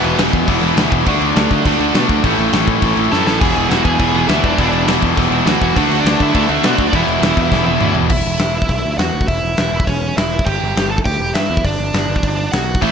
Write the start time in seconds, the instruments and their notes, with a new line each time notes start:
Already playing: overdriven electric guitar E2 B2 E3, distorted electric guitar E3 G#3 B3 E4, lead electric guitar B3 B4
0.04 picked electric bass E1, crash
0.18 picked electric bass E1, overdriven electric guitar E2 B2 E3, snare, crash
0.33 picked electric bass E2, kick, crash
0.48 picked electric bass E1, overdriven electric guitar E2 B2 E3, kick, crash
0.62 picked electric bass E1, distorted electric guitar E3 G#3 B3 E4, crash
0.76 picked electric bass D2, overdriven electric guitar E2 B2 E3, distorted electric guitar E3 G#3 B3 E4, snare, crash
0.92 picked electric bass E1, kick, crash
1.06 picked electric bass D2, distorted electric guitar D3 A3 D4 F#4, overdriven electric guitar D3 A3 D4, kick, crash
1.21 picked electric bass D2, crash
1.36 picked electric bass D2, overdriven electric guitar D3 A3 D4, snare, crash
1.51 picked electric bass D3, kick, crash
1.65 picked electric bass D2, overdriven electric guitar D3 A3 D4, kick, crash
1.79 picked electric bass D2, distorted electric guitar D3 A3 D4 F#4, crash
1.94 picked electric bass B2, distorted electric guitar D3 A3 D4 F#4, overdriven electric guitar D3 A3 D4, snare, crash
2.09 picked electric bass D2, kick, crash
2.23 picked electric bass A1, distorted electric guitar A2 E3 A3 C#4 E4, overdriven electric guitar A2 E3 A3, kick, crash
2.39 picked electric bass A1, crash
2.53 picked electric bass A1, overdriven electric guitar A2 E3 A3, snare, crash
2.67 picked electric bass A2, kick, crash
2.82 picked electric bass A1, overdriven electric guitar A2 E3 A3, kick, crash
2.96 picked electric bass A1, distorted electric guitar A2 E3 A3 C#4 E4, crash
3.11 picked electric bass F#2, distorted electric guitar A2 E3 A3 C#4 E4, overdriven electric guitar A2 E3 A3, lead electric guitar A4 A5, snare
3.27 picked electric bass A1, lead electric guitar A4 A5, snare
3.40 picked electric bass E1, overdriven electric guitar E2 B2 E3, distorted electric guitar E3 G#3 B3 E4, lead electric guitar G#4 G#5, kick, crash
3.55 picked electric bass E1, lead electric guitar G#4 G#5, crash
3.70 picked electric bass E1, overdriven electric guitar E2 B2 E3, lead electric guitar F#4 F#5, snare, crash
3.85 picked electric bass E2, lead electric guitar G#4 G#5, kick, crash
3.99 picked electric bass E1, overdriven electric guitar E2 B2 E3, kick, crash
4.14 picked electric bass E1, distorted electric guitar E3 G#3 B3 E4, crash
4.28 picked electric bass D2, overdriven electric guitar E2 B2 E3, distorted electric guitar E3 G#3 B3 E4, lead electric guitar E4 E5, snare, crash
4.44 picked electric bass E1, lead electric guitar D4 D5, kick, crash
4.58 picked electric bass E1, overdriven electric guitar E2 B2 E3, distorted electric guitar E3 G#3 B3 E4, kick, crash
4.73 picked electric bass E1, crash
4.87 picked electric bass E1, overdriven electric guitar E2 B2 E3, snare, crash
5.02 picked electric bass E2, kick, crash
5.17 picked electric bass E1, overdriven electric guitar E2 B2 E3, kick, crash
5.31 picked electric bass E1, distorted electric guitar G#3 B3 E4, crash
5.35 distorted electric guitar E3
5.46 picked electric bass D2, overdriven electric guitar E2 B2 E3, distorted electric guitar E3 G#3 B3 E4, lead electric guitar F#4 F#5, snare, crash
5.62 picked electric bass E1, lead electric guitar F#4 F#5, kick, crash
5.76 picked electric bass D2, distorted electric guitar D3 A3 D4 F#4, overdriven electric guitar D3 A3 D4, kick, crash
5.89 picked electric bass D2, crash
6.00 lead electric guitar D4 D5
6.05 picked electric bass D2, overdriven electric guitar D3 A3 D4, snare, crash
6.20 picked electric bass D3, lead electric guitar E4 E5, kick, crash
6.35 picked electric bass D2, overdriven electric guitar D3 A3 D4, kick, crash
6.48 picked electric bass D2, distorted electric guitar D3 A3 D4 F#4, lead electric guitar E4 E5, crash
6.63 picked electric bass B2, distorted electric guitar D3 A3 D4 F#4, overdriven electric guitar D3 A3 D4, lead electric guitar F#4 F#5, snare, crash
6.78 picked electric bass D2, kick, crash
6.88 lead electric guitar D5
6.93 picked electric bass E1, overdriven electric guitar E2 B2 E3, distorted electric guitar E3 G#3 B3 E4, lead electric guitar E4 E5, kick, crash
7.07 picked electric bass E1, crash
7.22 picked electric bass E1, overdriven electric guitar E2 B2 E3, snare, crash
7.37 picked electric bass E2, kick, crash
7.52 picked electric bass E1, overdriven electric guitar E2 B2 E3, kick, snare
7.66 picked electric bass E1, distorted electric guitar E3 G#3 B3 E4, high tom
7.80 picked electric bass D2, overdriven electric guitar E2 B2 E3, distorted electric guitar E3 G#3 B3 E4, mid tom
7.95 picked electric bass E1, floor tom
8.10 picked electric bass E1, lead electric guitar E4 E5, kick, crash
8.25 picked electric bass E1
8.39 picked electric bass E1, snare, open hi-hat
8.62 kick
8.69 picked electric bass B1, kick, open hi-hat
8.84 picked electric bass D2
8.98 picked electric bass E2, lead electric guitar F#4 F#5, snare, open hi-hat
9.14 picked electric bass D2
9.21 kick
9.27 picked electric bass E1, lead electric guitar E4 E5, kick, open hi-hat
9.43 picked electric bass E1
9.57 picked electric bass E1, snare, open hi-hat
9.72 picked electric bass E1
9.80 kick
9.87 picked electric bass E1, lead electric guitar C#4 C#5, kick, open hi-hat
10.17 picked electric bass E1, lead electric guitar E4 E5, snare, open hi-hat
10.39 kick
10.46 picked electric bass G1, lead electric guitar G4 G5, kick, crash
10.62 picked electric bass G1
10.76 picked electric bass G1, snare, open hi-hat
10.91 lead electric guitar A4 A5
10.98 kick
11.05 picked electric bass D2, lead electric guitar G4 G5, kick, open hi-hat
11.20 picked electric bass E1
11.34 picked electric bass G2, lead electric guitar E4 E5, snare, open hi-hat
11.50 picked electric bass E2
11.57 kick
11.64 picked electric bass G1, lead electric guitar D4 D5, kick, open hi-hat
11.79 picked electric bass G1
11.94 picked electric bass G1, snare, open hi-hat
12.08 picked electric bass G1
12.16 kick
12.23 picked electric bass G1, kick, open hi-hat
12.52 picked electric bass B1, lead electric guitar F#4 F#5, snare, open hi-hat
12.75 kick
12.82 picked electric bass A1, overdriven electric guitar A2 E3 A3, distorted electric guitar A2 E3 A3 C#4 E4, lead electric guitar E4 E5, kick, crash